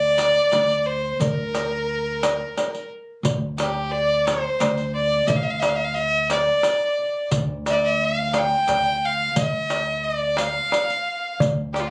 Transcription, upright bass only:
0.00 0.38 D2 medium
0.53 1.14 D2 medium
1.20 2.42 D2 medium
3.23 4.46 D2 medium
4.60 5.21 D2 medium
5.28 6.50 D2 medium
7.32 8.54 D2 medium
8.68 9.29 D2 medium
9.36 10.58 D2 medium
11.40 11.90 D2 medium

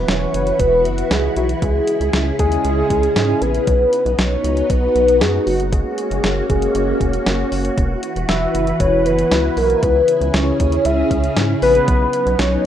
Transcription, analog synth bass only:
0.08 0.26 E1 medium
0.34 0.52 F#1 medium
0.59 0.87 E1 loud
0.85 1.03 F#1 medium
1.11 1.29 C#2 medium
1.36 1.54 B1 loud
1.62 1.80 C#2 loud
2.00 2.10 C#2 medium
2.13 2.31 C#2 loud
2.39 2.57 D#2 medium
2.65 2.83 C#2 loud
2.90 3.08 C#2 medium
3.16 3.34 G#2 medium
3.42 3.60 A#1 medium
3.67 3.85 B1 loud
4.06 4.15 B1 loud
4.18 4.36 B1 loud
4.44 4.62 C#2 medium
4.70 4.88 B1 loud
4.95 5.23 B1 medium
5.21 5.39 F#2 medium
5.47 5.83 F#1 loud
6.11 6.20 F#1 loud
6.24 6.42 F#1 loud
6.50 6.68 F#1 medium
6.75 6.93 F#1 loud
7.01 7.19 E1 medium
7.26 7.44 F#1 medium
7.52 7.70 F#1 medium
7.78 7.96 E1 loud
8.16 8.25 E1 loud
8.29 8.47 E1 loud
8.54 8.72 F#1 medium
8.80 9.07 E1 loud
9.06 9.24 F#1 loud
9.31 9.49 C#2 medium
9.57 9.75 B1 loud
9.83 10.01 C#2 loud
10.21 10.30 C#2 loud
10.34 10.52 C#2 loud
10.60 10.78 D#2 medium
10.85 11.03 C#2 loud
11.11 11.29 C#2 medium
11.37 11.54 G#2 medium
11.62 11.80 A#1 medium
11.88 12.06 B1 loud
12.26 12.35 B1 loud
12.39 12.57 B1 loud

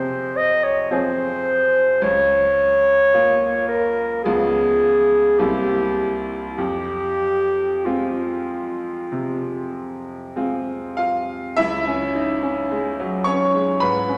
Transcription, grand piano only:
0.00 1.57 C3 soft
0.00 0.91 F3 soft
0.00 0.91 C4 soft
0.00 0.92 G#4 soft
0.91 1.98 F3 soft
0.91 1.98 C4 soft
0.91 1.99 G#4 soft
2.02 3.10 C#2 medium
3.14 4.21 A#3 soft
3.14 4.21 F4 medium
4.25 5.36 C#2 medium
4.25 5.35 F3 soft
4.25 5.36 B3 soft
4.25 5.36 F4 soft
5.39 6.54 C2 medium
5.39 6.54 A#3 soft
5.39 6.54 C4 soft
5.39 6.55 E4 soft
6.58 7.81 F2 medium
7.85 9.07 G#3 soft
7.85 9.08 C4 soft
7.85 9.08 F4 soft
9.12 11.11 C3 soft
10.36 11.55 G#3 soft
10.36 11.55 C4 soft
10.36 10.97 F4 soft
10.97 11.54 F4 soft
10.97 11.58 F5 medium
11.56 13.77 C#2 medium
11.56 13.22 E4 medium
11.56 13.25 E5 medium
11.87 12.32 C#4 medium
12.15 12.43 D#4 soft
12.43 12.88 C#4 soft
12.71 13.16 G#3 medium
13.00 13.27 F#3 soft
13.24 13.70 C#4 medium
13.24 13.76 C#5 medium
13.24 13.79 C#6 medium
13.55 13.97 G#3 soft
13.80 14.18 G#2 medium
13.80 14.18 B4 medium
13.80 14.18 B5 medium
14.08 14.18 C#4 soft

